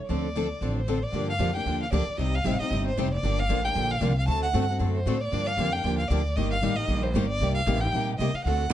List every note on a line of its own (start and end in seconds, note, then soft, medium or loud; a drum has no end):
0.08 0.51 D2 medium
0.08 0.27 D3 medium
0.08 0.27 F3 soft
0.08 0.27 C4 medium
0.08 0.28 D4 medium
0.08 0.28 A4 medium
0.08 0.71 D5 medium
0.35 0.45 D3 medium
0.35 0.46 F3 medium
0.35 0.46 C4 medium
0.35 0.46 D4 medium
0.35 0.46 A4 medium
0.61 1.03 A1 medium
0.61 0.80 D3 medium
0.61 0.80 F3 medium
0.61 0.80 C4 medium
0.61 0.80 D4 medium
0.61 0.80 A4 medium
0.77 1.05 C5 medium
0.88 0.98 D3 medium
0.88 0.98 F3 medium
0.88 0.98 C4 medium
0.88 0.98 D4 medium
0.88 0.98 A4 medium
1.03 1.29 D5 medium
1.12 1.38 G2 medium
1.12 1.32 D3 medium
1.12 1.32 F3 medium
1.12 1.32 A#3 medium
1.12 1.32 D4 medium
1.12 1.33 G4 medium
1.30 1.53 F5 medium
1.39 1.65 F2 medium
1.39 1.49 D3 medium
1.39 1.50 F3 medium
1.39 1.50 A#3 medium
1.39 1.50 D4 medium
1.39 1.50 G4 medium
1.55 1.65 A#3 soft
1.55 1.66 D4 soft
1.55 1.65 G4 medium
1.55 1.80 G5 medium
1.65 1.91 D#2 medium
1.65 1.84 D3 medium
1.65 1.85 F3 medium
1.65 1.84 A#3 medium
1.65 1.85 D4 medium
1.65 1.85 G4 medium
1.82 1.92 F5 medium
1.92 2.06 D2 medium
1.92 2.03 D3 medium
1.92 2.03 F3 medium
1.92 2.03 A#3 medium
1.92 2.03 D4 loud
1.92 2.03 G4 loud
1.92 2.17 D5 medium
2.07 muted upright bass stroke soft
2.18 2.43 C2 medium
2.18 2.37 C3 medium
2.18 2.37 G3 medium
2.18 2.37 C4 medium
2.18 2.38 D#4 medium
2.18 2.38 G4 medium
2.18 2.36 D#5 medium
2.35 2.60 F5 loud
2.44 2.58 A1 medium
2.44 2.55 C3 medium
2.44 2.55 G3 medium
2.44 2.55 C4 medium
2.44 2.55 D#4 medium
2.44 2.56 G4 loud
2.59 2.71 C4 soft
2.59 2.71 D#4 soft
2.59 2.70 G4 medium
2.59 2.85 D#5 medium
2.59 muted upright bass stroke soft
2.70 2.96 G1 medium
2.70 2.89 C3 medium
2.70 2.90 G3 medium
2.70 2.90 C4 medium
2.70 2.90 D#4 medium
2.70 2.90 G4 medium
2.87 3.11 C5 medium
2.97 3.22 F1 medium
2.97 3.07 C3 medium
2.97 3.08 G3 medium
2.97 3.08 C4 medium
2.97 3.08 D#4 medium
2.97 3.08 G4 medium
3.14 3.41 D5 medium
3.23 3.48 G1 medium
3.23 3.41 D3 medium
3.23 3.41 F3 soft
3.23 3.41 A#3 medium
3.23 3.42 D4 medium
3.23 3.42 G4 medium
3.39 3.64 F5 loud
3.49 3.74 A1 medium
3.49 3.59 D3 medium
3.49 3.60 F3 medium
3.49 3.60 A#3 loud
3.49 3.60 D4 medium
3.49 3.60 G4 medium
3.64 3.75 A#3 medium
3.64 3.75 D4 soft
3.64 3.75 G4 soft
3.64 3.92 G5 loud
3.75 4.00 A#1 medium
3.75 3.94 D3 medium
3.75 3.94 F3 medium
3.75 3.94 A#3 medium
3.75 3.94 D4 medium
3.75 3.94 G4 medium
3.91 4.17 F5 loud
4.01 4.26 C2 medium
4.01 4.11 D3 medium
4.01 4.11 F3 medium
4.01 4.12 A#3 medium
4.01 4.12 D4 medium
4.01 4.12 G4 medium
4.18 4.28 F5 medium
4.27 4.53 D2 medium
4.27 4.45 D3 medium
4.27 4.46 A3 medium
4.27 4.46 C4 medium
4.27 4.46 F#4 medium
4.27 4.46 A4 medium
4.27 4.42 A5 medium
4.43 4.67 F#5 loud
4.53 4.79 G2 medium
4.53 4.64 D3 medium
4.53 4.64 A3 medium
4.53 4.64 C4 medium
4.53 4.64 F#4 medium
4.53 4.64 A4 loud
4.69 4.79 C4 soft
4.69 4.79 F#4 medium
4.69 4.79 A4 medium
4.79 5.05 F#2 medium
4.79 4.98 D3 medium
4.79 4.98 A3 medium
4.79 4.98 C4 medium
4.79 4.98 F#4 medium
4.79 4.99 A4 medium
4.95 5.23 C5 medium
5.06 5.31 A2 medium
5.06 5.17 D3 medium
5.06 5.17 A3 medium
5.06 5.17 C4 loud
5.06 5.17 F#4 medium
5.06 5.17 A4 medium
5.21 5.48 D5 loud
5.32 5.56 G2 medium
5.32 5.50 D3 medium
5.32 5.50 F3 medium
5.32 5.51 A#3 medium
5.32 5.51 D4 medium
5.32 5.51 G4 medium
5.47 5.74 F5 loud
5.57 5.83 F2 medium
5.57 5.68 D3 medium
5.57 5.68 F3 medium
5.57 5.69 A#3 loud
5.57 5.69 D4 medium
5.57 5.69 G4 medium
5.72 5.83 A#3 soft
5.72 5.83 D4 soft
5.72 5.84 G4 soft
5.72 5.98 G5 loud
5.84 6.09 D#2 medium
5.84 6.02 D3 medium
5.84 6.02 F3 medium
5.84 6.02 A#3 medium
5.84 6.02 D4 medium
5.84 6.03 G4 medium
5.98 6.10 F5 medium
6.08 6.35 D2 medium
6.08 6.21 D3 medium
6.08 6.21 F3 medium
6.08 6.21 A#3 medium
6.08 6.21 D4 medium
6.08 6.21 G4 loud
6.08 6.37 D5 medium
6.36 6.61 G1 medium
6.36 6.55 D#3 medium
6.36 6.55 G3 medium
6.36 6.55 A#3 medium
6.36 6.55 D#4 medium
6.36 6.55 G4 medium
6.36 6.50 D#5 loud
6.50 6.77 F5 loud
6.62 6.87 A1 medium
6.62 6.73 D#3 medium
6.62 6.73 G3 loud
6.62 6.73 A#3 medium
6.62 6.73 D#4 medium
6.62 6.73 G4 medium
6.76 6.88 A#3 soft
6.76 6.88 D#4 soft
6.76 6.88 G4 medium
6.76 7.04 D#5 loud
6.88 7.13 A#1 medium
6.88 7.07 D#3 medium
6.88 7.07 G3 medium
6.88 7.07 A#3 medium
6.88 7.07 D#4 medium
6.88 7.08 G4 medium
7.03 7.27 C5 medium
7.14 7.39 G1 medium
7.14 7.25 D#3 medium
7.14 7.25 G3 loud
7.14 7.25 A#3 loud
7.14 7.26 D#4 loud
7.14 7.26 G4 loud
7.28 7.53 D5 loud
7.40 7.66 C2 medium
7.40 7.59 C3 medium
7.40 7.59 G3 medium
7.40 7.60 A#3 medium
7.40 7.60 D#4 medium
7.40 7.60 G4 medium
7.54 7.82 F5 loud
7.66 7.92 A1 loud
7.66 7.77 C3 medium
7.66 7.77 G3 medium
7.66 7.77 A#3 medium
7.66 7.78 D#4 medium
7.66 7.78 G4 loud
7.80 7.94 A#3 soft
7.80 7.93 D#4 soft
7.80 7.93 G4 medium
7.80 8.07 G5 loud
7.92 8.18 A#1 medium
7.92 8.12 C3 medium
7.92 8.12 G3 medium
7.92 8.12 A#3 medium
7.92 8.12 D#4 medium
7.92 8.13 G4 medium
8.18 8.33 C2 medium
8.18 8.30 C3 medium
8.18 8.30 G3 medium
8.18 8.30 A#3 medium
8.18 8.30 D#4 medium
8.18 8.31 G4 loud
8.18 8.36 D#5 medium
8.33 8.44 F5 medium
8.33 muted upright bass stroke soft
8.45 8.70 D2 medium
8.45 8.64 D3 medium
8.45 8.64 A3 medium
8.45 8.64 C4 medium
8.45 8.64 F#4 medium
8.45 8.64 A4 medium
8.45 8.73 F#5 medium